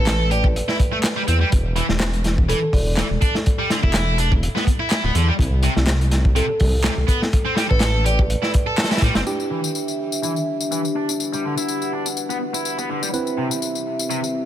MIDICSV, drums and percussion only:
0, 0, Header, 1, 2, 480
1, 0, Start_track
1, 0, Key_signature, 1, "minor"
1, 0, Tempo, 483871
1, 1511, Time_signature, 4, 2, 24, 8
1, 14337, End_track
2, 0, Start_track
2, 0, Title_t, "Drums"
2, 70, Note_on_c, 9, 39, 109
2, 71, Note_on_c, 9, 38, 114
2, 73, Note_on_c, 9, 42, 98
2, 169, Note_off_c, 9, 39, 0
2, 170, Note_off_c, 9, 38, 0
2, 172, Note_off_c, 9, 42, 0
2, 308, Note_on_c, 9, 42, 70
2, 408, Note_off_c, 9, 42, 0
2, 436, Note_on_c, 9, 36, 100
2, 536, Note_off_c, 9, 36, 0
2, 558, Note_on_c, 9, 42, 88
2, 657, Note_off_c, 9, 42, 0
2, 680, Note_on_c, 9, 38, 41
2, 779, Note_off_c, 9, 38, 0
2, 789, Note_on_c, 9, 36, 88
2, 791, Note_on_c, 9, 42, 73
2, 888, Note_off_c, 9, 36, 0
2, 890, Note_off_c, 9, 42, 0
2, 1028, Note_on_c, 9, 38, 116
2, 1029, Note_on_c, 9, 39, 112
2, 1033, Note_on_c, 9, 42, 88
2, 1127, Note_off_c, 9, 38, 0
2, 1128, Note_off_c, 9, 39, 0
2, 1132, Note_off_c, 9, 42, 0
2, 1268, Note_on_c, 9, 42, 67
2, 1367, Note_off_c, 9, 42, 0
2, 1509, Note_on_c, 9, 42, 86
2, 1513, Note_on_c, 9, 36, 100
2, 1608, Note_off_c, 9, 42, 0
2, 1612, Note_off_c, 9, 36, 0
2, 1746, Note_on_c, 9, 42, 71
2, 1846, Note_off_c, 9, 42, 0
2, 1875, Note_on_c, 9, 38, 49
2, 1975, Note_off_c, 9, 38, 0
2, 1984, Note_on_c, 9, 38, 127
2, 1987, Note_on_c, 9, 42, 84
2, 1989, Note_on_c, 9, 39, 106
2, 2083, Note_off_c, 9, 38, 0
2, 2087, Note_off_c, 9, 42, 0
2, 2089, Note_off_c, 9, 39, 0
2, 2117, Note_on_c, 9, 42, 43
2, 2217, Note_off_c, 9, 42, 0
2, 2225, Note_on_c, 9, 42, 69
2, 2236, Note_on_c, 9, 38, 49
2, 2324, Note_off_c, 9, 42, 0
2, 2335, Note_off_c, 9, 38, 0
2, 2362, Note_on_c, 9, 36, 95
2, 2461, Note_off_c, 9, 36, 0
2, 2474, Note_on_c, 9, 42, 82
2, 2573, Note_off_c, 9, 42, 0
2, 2709, Note_on_c, 9, 36, 91
2, 2716, Note_on_c, 9, 46, 75
2, 2808, Note_off_c, 9, 36, 0
2, 2815, Note_off_c, 9, 46, 0
2, 2948, Note_on_c, 9, 39, 102
2, 2950, Note_on_c, 9, 38, 115
2, 2960, Note_on_c, 9, 42, 93
2, 3047, Note_off_c, 9, 39, 0
2, 3050, Note_off_c, 9, 38, 0
2, 3059, Note_off_c, 9, 42, 0
2, 3191, Note_on_c, 9, 42, 68
2, 3193, Note_on_c, 9, 36, 92
2, 3290, Note_off_c, 9, 42, 0
2, 3292, Note_off_c, 9, 36, 0
2, 3323, Note_on_c, 9, 38, 51
2, 3423, Note_off_c, 9, 38, 0
2, 3434, Note_on_c, 9, 42, 77
2, 3439, Note_on_c, 9, 36, 112
2, 3533, Note_off_c, 9, 42, 0
2, 3538, Note_off_c, 9, 36, 0
2, 3672, Note_on_c, 9, 38, 54
2, 3676, Note_on_c, 9, 42, 66
2, 3772, Note_off_c, 9, 38, 0
2, 3775, Note_off_c, 9, 42, 0
2, 3802, Note_on_c, 9, 36, 95
2, 3902, Note_off_c, 9, 36, 0
2, 3907, Note_on_c, 9, 39, 103
2, 3908, Note_on_c, 9, 38, 121
2, 3915, Note_on_c, 9, 42, 86
2, 4006, Note_off_c, 9, 39, 0
2, 4007, Note_off_c, 9, 38, 0
2, 4014, Note_off_c, 9, 42, 0
2, 4150, Note_on_c, 9, 42, 69
2, 4249, Note_off_c, 9, 42, 0
2, 4284, Note_on_c, 9, 36, 97
2, 4383, Note_off_c, 9, 36, 0
2, 4395, Note_on_c, 9, 42, 81
2, 4494, Note_off_c, 9, 42, 0
2, 4527, Note_on_c, 9, 38, 45
2, 4626, Note_off_c, 9, 38, 0
2, 4633, Note_on_c, 9, 36, 89
2, 4640, Note_on_c, 9, 42, 69
2, 4732, Note_off_c, 9, 36, 0
2, 4739, Note_off_c, 9, 42, 0
2, 4868, Note_on_c, 9, 39, 104
2, 4872, Note_on_c, 9, 42, 90
2, 4875, Note_on_c, 9, 38, 107
2, 4967, Note_off_c, 9, 39, 0
2, 4971, Note_off_c, 9, 42, 0
2, 4974, Note_off_c, 9, 38, 0
2, 5109, Note_on_c, 9, 42, 67
2, 5208, Note_off_c, 9, 42, 0
2, 5346, Note_on_c, 9, 36, 102
2, 5359, Note_on_c, 9, 42, 80
2, 5445, Note_off_c, 9, 36, 0
2, 5459, Note_off_c, 9, 42, 0
2, 5581, Note_on_c, 9, 42, 75
2, 5680, Note_off_c, 9, 42, 0
2, 5719, Note_on_c, 9, 38, 49
2, 5818, Note_off_c, 9, 38, 0
2, 5823, Note_on_c, 9, 38, 118
2, 5823, Note_on_c, 9, 42, 101
2, 5827, Note_on_c, 9, 39, 95
2, 5922, Note_off_c, 9, 38, 0
2, 5923, Note_off_c, 9, 42, 0
2, 5927, Note_off_c, 9, 39, 0
2, 5964, Note_on_c, 9, 42, 40
2, 6063, Note_off_c, 9, 42, 0
2, 6065, Note_on_c, 9, 42, 68
2, 6067, Note_on_c, 9, 38, 52
2, 6165, Note_off_c, 9, 42, 0
2, 6166, Note_off_c, 9, 38, 0
2, 6200, Note_on_c, 9, 36, 93
2, 6299, Note_off_c, 9, 36, 0
2, 6309, Note_on_c, 9, 42, 93
2, 6408, Note_off_c, 9, 42, 0
2, 6544, Note_on_c, 9, 46, 89
2, 6554, Note_on_c, 9, 36, 102
2, 6643, Note_off_c, 9, 46, 0
2, 6653, Note_off_c, 9, 36, 0
2, 6786, Note_on_c, 9, 38, 120
2, 6788, Note_on_c, 9, 39, 103
2, 6790, Note_on_c, 9, 42, 98
2, 6885, Note_off_c, 9, 38, 0
2, 6887, Note_off_c, 9, 39, 0
2, 6889, Note_off_c, 9, 42, 0
2, 7025, Note_on_c, 9, 36, 83
2, 7030, Note_on_c, 9, 42, 68
2, 7124, Note_off_c, 9, 36, 0
2, 7129, Note_off_c, 9, 42, 0
2, 7165, Note_on_c, 9, 38, 52
2, 7264, Note_off_c, 9, 38, 0
2, 7272, Note_on_c, 9, 42, 80
2, 7274, Note_on_c, 9, 36, 105
2, 7371, Note_off_c, 9, 42, 0
2, 7373, Note_off_c, 9, 36, 0
2, 7504, Note_on_c, 9, 38, 56
2, 7515, Note_on_c, 9, 42, 73
2, 7603, Note_off_c, 9, 38, 0
2, 7615, Note_off_c, 9, 42, 0
2, 7645, Note_on_c, 9, 36, 90
2, 7741, Note_on_c, 9, 38, 122
2, 7744, Note_off_c, 9, 36, 0
2, 7745, Note_on_c, 9, 42, 94
2, 7748, Note_on_c, 9, 39, 102
2, 7841, Note_off_c, 9, 38, 0
2, 7845, Note_off_c, 9, 42, 0
2, 7847, Note_off_c, 9, 39, 0
2, 7993, Note_on_c, 9, 42, 63
2, 8092, Note_off_c, 9, 42, 0
2, 8124, Note_on_c, 9, 36, 104
2, 8224, Note_off_c, 9, 36, 0
2, 8233, Note_on_c, 9, 42, 87
2, 8332, Note_off_c, 9, 42, 0
2, 8363, Note_on_c, 9, 38, 42
2, 8462, Note_off_c, 9, 38, 0
2, 8469, Note_on_c, 9, 42, 67
2, 8477, Note_on_c, 9, 36, 93
2, 8569, Note_off_c, 9, 42, 0
2, 8576, Note_off_c, 9, 36, 0
2, 8709, Note_on_c, 9, 38, 95
2, 8711, Note_on_c, 9, 39, 105
2, 8711, Note_on_c, 9, 42, 72
2, 8770, Note_off_c, 9, 38, 0
2, 8770, Note_off_c, 9, 42, 0
2, 8770, Note_on_c, 9, 38, 88
2, 8770, Note_on_c, 9, 42, 69
2, 8810, Note_off_c, 9, 39, 0
2, 8839, Note_off_c, 9, 42, 0
2, 8839, Note_on_c, 9, 42, 67
2, 8841, Note_off_c, 9, 38, 0
2, 8841, Note_on_c, 9, 38, 87
2, 8892, Note_off_c, 9, 42, 0
2, 8892, Note_on_c, 9, 42, 70
2, 8901, Note_off_c, 9, 38, 0
2, 8901, Note_on_c, 9, 38, 90
2, 8945, Note_off_c, 9, 42, 0
2, 8945, Note_on_c, 9, 42, 65
2, 8948, Note_on_c, 9, 36, 87
2, 9001, Note_off_c, 9, 38, 0
2, 9045, Note_off_c, 9, 42, 0
2, 9047, Note_off_c, 9, 36, 0
2, 9078, Note_on_c, 9, 38, 92
2, 9079, Note_on_c, 9, 42, 74
2, 9177, Note_off_c, 9, 38, 0
2, 9179, Note_off_c, 9, 42, 0
2, 9192, Note_on_c, 9, 54, 51
2, 9291, Note_off_c, 9, 54, 0
2, 9323, Note_on_c, 9, 54, 29
2, 9422, Note_off_c, 9, 54, 0
2, 9562, Note_on_c, 9, 54, 62
2, 9661, Note_off_c, 9, 54, 0
2, 9672, Note_on_c, 9, 54, 53
2, 9771, Note_off_c, 9, 54, 0
2, 9802, Note_on_c, 9, 54, 32
2, 9901, Note_off_c, 9, 54, 0
2, 10041, Note_on_c, 9, 54, 61
2, 10140, Note_off_c, 9, 54, 0
2, 10151, Note_on_c, 9, 54, 54
2, 10250, Note_off_c, 9, 54, 0
2, 10280, Note_on_c, 9, 54, 32
2, 10380, Note_off_c, 9, 54, 0
2, 10521, Note_on_c, 9, 54, 62
2, 10620, Note_off_c, 9, 54, 0
2, 10631, Note_on_c, 9, 54, 54
2, 10730, Note_off_c, 9, 54, 0
2, 10761, Note_on_c, 9, 54, 31
2, 10860, Note_off_c, 9, 54, 0
2, 11000, Note_on_c, 9, 54, 61
2, 11099, Note_off_c, 9, 54, 0
2, 11110, Note_on_c, 9, 54, 51
2, 11210, Note_off_c, 9, 54, 0
2, 11243, Note_on_c, 9, 54, 30
2, 11342, Note_off_c, 9, 54, 0
2, 11483, Note_on_c, 9, 54, 62
2, 11582, Note_off_c, 9, 54, 0
2, 11591, Note_on_c, 9, 54, 53
2, 11690, Note_off_c, 9, 54, 0
2, 11722, Note_on_c, 9, 54, 30
2, 11821, Note_off_c, 9, 54, 0
2, 11962, Note_on_c, 9, 54, 63
2, 12061, Note_off_c, 9, 54, 0
2, 12071, Note_on_c, 9, 54, 57
2, 12170, Note_off_c, 9, 54, 0
2, 12202, Note_on_c, 9, 54, 31
2, 12301, Note_off_c, 9, 54, 0
2, 12443, Note_on_c, 9, 54, 61
2, 12542, Note_off_c, 9, 54, 0
2, 12551, Note_on_c, 9, 54, 53
2, 12650, Note_off_c, 9, 54, 0
2, 12682, Note_on_c, 9, 54, 33
2, 12781, Note_off_c, 9, 54, 0
2, 12923, Note_on_c, 9, 54, 61
2, 13022, Note_off_c, 9, 54, 0
2, 13031, Note_on_c, 9, 54, 49
2, 13131, Note_off_c, 9, 54, 0
2, 13162, Note_on_c, 9, 54, 29
2, 13261, Note_off_c, 9, 54, 0
2, 13403, Note_on_c, 9, 54, 63
2, 13502, Note_off_c, 9, 54, 0
2, 13512, Note_on_c, 9, 54, 51
2, 13611, Note_off_c, 9, 54, 0
2, 13643, Note_on_c, 9, 54, 30
2, 13742, Note_off_c, 9, 54, 0
2, 13882, Note_on_c, 9, 54, 62
2, 13981, Note_off_c, 9, 54, 0
2, 13992, Note_on_c, 9, 54, 54
2, 14091, Note_off_c, 9, 54, 0
2, 14122, Note_on_c, 9, 54, 31
2, 14221, Note_off_c, 9, 54, 0
2, 14337, End_track
0, 0, End_of_file